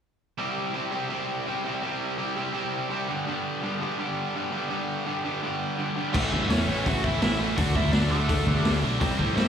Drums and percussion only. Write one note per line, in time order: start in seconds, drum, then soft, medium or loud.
6.14 kick loud
6.14 crash loud
6.32 kick medium
6.50 snare loud
6.50 open hi-hat medium
6.86 kick loud
6.86 open hi-hat medium
7.04 kick loud
7.22 snare loud
7.22 open hi-hat medium
7.57 kick loud
7.57 open hi-hat medium
7.75 kick medium
7.93 snare loud
7.93 open hi-hat medium
8.29 kick loud
8.29 open hi-hat medium
8.47 kick medium
8.65 snare loud
8.65 open hi-hat medium
9.01 kick loud
9.01 open hi-hat medium
9.19 kick medium
9.38 snare loud
9.38 open hi-hat medium